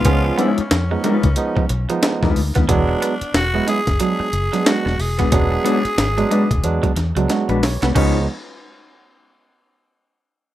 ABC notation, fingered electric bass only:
X:1
M:4/4
L:1/16
Q:"Swing 16ths" 1/4=91
K:Dbmix
V:1 name="Fingered electric bass" clef=bass
D,,2 z2 F,,2 z D,, z2 C,, z2 _F,, =D,, E,, | =E,,,2 z2 E,,,2 z ^F,,, z2 F,,, z2 E,,, E,,, _E,,, | =E,,,2 z2 ^G,,,2 z E,,, =E,, z E,, D,, z B,,, =B,,, =C,, | D,,2 z12 z2 |]